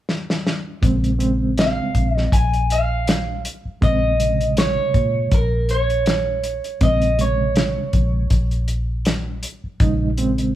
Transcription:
0.09 snare
0.30 snare
0.47 snare
0.81 fingered electric bass A#1, reed electric piano C#3 G#3 C4, kick, closed hi-hat
1.04 closed hi-hat
1.19 reed electric piano C#3 G#3 C4, closed hi-hat
1.58 clean electric guitar F5, snare, closed hi-hat
1.95 fingered electric bass A#1, kick, closed hi-hat
2.15 clean electric guitar D#5, snare
2.32 fingered electric bass A#1, clean electric guitar G#5, kick, closed hi-hat
2.54 closed hi-hat
2.70 clean electric guitar F5, closed hi-hat
3.07 snare, closed hi-hat
3.45 closed hi-hat
3.65 muted fingered electric bass stroke
3.81 fingered electric bass A#1, reed electric piano C#3 G#3 C4, clean electric guitar D#5, kick, closed hi-hat
4.19 reed electric piano C3 C#3 G#3, closed hi-hat
4.41 closed hi-hat
4.57 clean electric guitar C#5, snare, closed hi-hat
4.94 fingered electric bass A#2, kick, closed hi-hat
5.32 fingered electric bass A#1, clean electric guitar A#4, kick, closed hi-hat
5.69 clean electric guitar C#5, closed hi-hat
5.90 closed hi-hat
6.06 snare, closed hi-hat
6.44 closed hi-hat
6.64 closed hi-hat
6.81 fingered electric bass A#1, reed electric piano C#3 G#3 C4, clean electric guitar D#5, kick, closed hi-hat
7.02 closed hi-hat
7.18 reed electric piano C3 C#3 G#3, clean electric guitar C#5, closed hi-hat
7.56 snare, closed hi-hat
7.93 fingered electric bass A#1, kick, closed hi-hat
8.30 fingered electric bass A#1, kick, closed hi-hat
8.51 closed hi-hat
8.68 closed hi-hat
9.05 snare, closed hi-hat
9.43 closed hi-hat
9.64 muted fingered electric bass stroke
9.80 fingered electric bass A#1, reed electric piano C#3 G#3 D#4, kick, closed hi-hat
10.18 reed electric piano C#3 G#3 C4, closed hi-hat
10.38 closed hi-hat

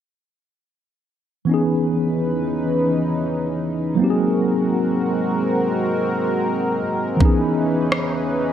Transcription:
1.45 tine electric piano E3 B3, analog synth pad E3 C#4 D#4 B4
1.49 tine electric piano C#4 D#4
1.54 tine electric piano G#4
3.95 tine electric piano F#3 A#3, analog synth pad G#3 C4 A#4
3.99 tine electric piano C4 D#4, analog synth pad F#4
4.04 tine electric piano G4
4.10 tine electric piano G#4
7.17 tine electric piano E3 B3, analog synth pad E3 C#4 D#4 B4, kick
7.21 tine electric piano C#4 D#4
7.25 tine electric piano G#4
7.92 cross-stick

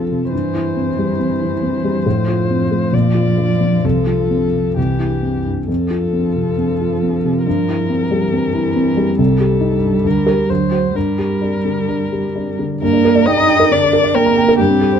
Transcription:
Already playing: grand piano F2 C3 C4 F4, cello F3, violin A4
0.11 grand piano C3
0.32 grand piano G2, cello E3, violin C5
0.55 grand piano E4
0.76 grand piano C4
0.98 grand piano G3
1.20 grand piano C4
1.42 grand piano E4
1.63 grand piano C4
1.84 grand piano G3
2.05 grand piano A2, cello F3
2.28 grand piano F4
2.50 grand piano C4
2.71 grand piano A3
2.92 grand piano A#2, violin D5
3.15 grand piano F4
3.37 grand piano D4
3.61 grand piano F3
3.84 grand piano C2, violin A4
4.07 grand piano F4
4.30 grand piano C4
4.53 grand piano C3
4.77 grand piano C2, cello E3, violin G4
4.99 grand piano E4
5.22 grand piano C4
5.46 grand piano G2
5.68 grand piano F2, cello F3, violin A4
5.90 grand piano F4
6.13 grand piano C4
6.35 grand piano C3
6.58 grand piano C4
6.81 grand piano F4
7.03 grand piano C4
7.24 grand piano C3
7.46 grand piano G2, violin A#4
7.69 grand piano E4
7.90 grand piano C4
8.11 grand piano G3
8.33 cello E3, grand piano C4
8.54 grand piano E4
8.76 grand piano C4
8.97 grand piano G3
9.18 grand piano C2, cello G3, violin A4
9.40 grand piano G4
9.61 grand piano D#4
9.83 grand piano G2
10.04 grand piano D2, violin A#4
10.26 grand piano G4 A#4
10.49 grand piano D2, cello F#3, violin C5
10.71 grand piano F#4 C5
10.95 grand piano G2, cello G3, violin A#4
11.18 grand piano G4
11.42 grand piano D4
11.65 grand piano D3
11.88 grand piano D4
12.12 grand piano G4
12.36 grand piano D4
12.59 grand piano D3
12.82 grand piano G2, cello A#3, violin A#4
12.93 grand piano D4
13.05 grand piano A#4
13.15 grand piano D5
13.26 cello D#4, violin D#5, grand piano G5
13.37 grand piano A#5
13.48 grand piano G5
13.60 grand piano A#4
13.71 grand piano D3, cello D4, violin D5
13.83 grand piano D4
13.93 grand piano A#4
14.04 grand piano D5
14.14 cello A#3, violin A#4, grand piano G5
14.26 grand piano A#5
14.37 grand piano G5
14.48 grand piano A#4
14.58 grand piano G2, cello G3, violin G4
14.70 grand piano C4
14.81 grand piano A4
14.93 grand piano C5

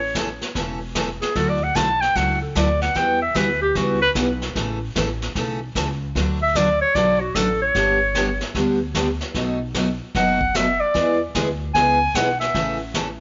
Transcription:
Already playing: upright bass A1, clarinet C#5
0.15 steel-string acoustic guitar C#3 E3 A3 C#4 A4, kick, snare, hi-hat pedal
0.41 snare
0.55 upright bass E1, steel-string acoustic guitar C#3 E3 A3 C#4 A4, brush sweep, kick, snare
0.95 steel-string acoustic guitar C#3 E3 A3 C#4 A4, kick, snare, hi-hat pedal
1.22 clarinet G#4, snare
1.36 upright bass D2, steel-string acoustic guitar D3 F#3 A3 E4 F#4, clarinet A4, brush sweep, kick, snare
1.50 clarinet D5
1.64 clarinet F#5
1.75 upright bass B1, steel-string acoustic guitar D3 F#3 A3 E4 F#4, clarinet A5, kick, snare, hi-hat pedal
2.01 clarinet G5, snare
2.15 upright bass C#2, steel-string acoustic guitar D3 F#3 A3 E4 F#4, clarinet F#5, brush sweep, kick, snare
2.42 clarinet A4
2.55 upright bass D2, steel-string acoustic guitar D3 F#3 A3 E4 F#4, clarinet D5, kick, snare, hi-hat pedal
2.81 clarinet F#5, snare
2.94 upright bass E2, steel-string acoustic guitar E3 G3 B3 F#4, clarinet G5, brush sweep, kick, snare
3.22 clarinet E5
3.35 upright bass D2, steel-string acoustic guitar E3 G3 B3 F#4, clarinet B4, kick, snare, hi-hat pedal
3.62 clarinet G4
3.75 upright bass C#2, steel-string acoustic guitar E3 G3 B3 F#4, clarinet F#4, brush sweep, kick, snare
4.02 clarinet B4
4.15 upright bass B1, steel-string acoustic guitar E3 G3 B3 F#4, kick, snare, hi-hat pedal
4.42 snare
4.55 upright bass A1, steel-string acoustic guitar C#3 E3 A3 C#4 A4, brush sweep, kick, snare
4.95 upright bass A1, steel-string acoustic guitar C#3 E3 A3 C#4 A4, kick, snare, hi-hat pedal
5.22 snare
5.35 upright bass B1, steel-string acoustic guitar C#3 E3 A3 C#4 A4, brush sweep, kick, snare
5.75 upright bass C#2, steel-string acoustic guitar C#3 E3 A3 C#4 A4, kick, snare, hi-hat pedal
6.15 upright bass D2, steel-string acoustic guitar D3 F#3 A3 D4 F#4, brush sweep, kick, snare
6.42 clarinet E5
6.55 steel-string acoustic guitar D3 F#3 A3 D4 F#4, clarinet D5, kick, snare, hi-hat pedal
6.81 clarinet C#5
6.95 upright bass B1, steel-string acoustic guitar D3 F#3 A3 D4 F#4, clarinet D5, brush sweep, kick, snare
7.20 clarinet F#4
7.35 upright bass A1, steel-string acoustic guitar D3 F#3 A3 D4 F#4, clarinet A4, kick, snare, hi-hat pedal
7.62 clarinet C#5
7.75 upright bass G1, steel-string acoustic guitar D3 G3 B3 D4 G4, brush sweep, kick, snare
8.15 steel-string acoustic guitar D3 G3 B3 D4 G4, kick, snare, hi-hat pedal
8.41 snare
8.55 upright bass D2, steel-string acoustic guitar D3 G3 B3 D4 G4, brush sweep, kick, snare
8.95 steel-string acoustic guitar D3 G3 B3 D4 G4, kick, snare, hi-hat pedal
9.21 snare
9.35 upright bass B1, steel-string acoustic guitar B2 F#3 A3 D#4 F#4, brush sweep, kick, snare
9.74 steel-string acoustic guitar B2 F#3 A3 D#4 F#4, kick, snare, hi-hat pedal
10.15 upright bass F#1, steel-string acoustic guitar B2 F#3 A3 D#4 F#4, clarinet F#5, brush sweep, kick, snare
10.41 kick
10.54 steel-string acoustic guitar B2 F#3 A3 D#4 F#4, clarinet E5, kick, snare, hi-hat pedal
10.81 clarinet D5
10.94 upright bass E2, steel-string acoustic guitar E3 G#3 B3 E4 G#4, brush sweep, kick, snare
11.35 upright bass D2, steel-string acoustic guitar E3 G#3 B3 E4 G#4, kick, snare, hi-hat pedal
11.75 upright bass C#2, steel-string acoustic guitar E3 G#3 B3 E4 G#4, clarinet G#5, brush sweep, kick, snare
12.15 upright bass B1, steel-string acoustic guitar E3 G#3 B3 E4 G#4, clarinet F#5, kick, snare, hi-hat pedal
12.40 clarinet E5, snare
12.54 upright bass A1, steel-string acoustic guitar C#3 E3 A3 C#4 A4, brush sweep, kick, snare
12.94 steel-string acoustic guitar C#3 E3 A3 C#4 A4, kick, snare, hi-hat pedal

